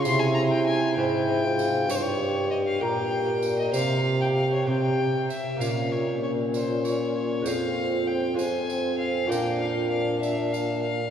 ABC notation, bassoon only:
X:1
M:6/8
L:1/8
Q:3/8=65
K:Cphr
V:1 name="Bassoon" clef=bass
C,3 A,,3 | G,,3 B,,3 | C,3 C,2 z | [K:Bbdor] B,,6 |
F,,6 | B,,6 |]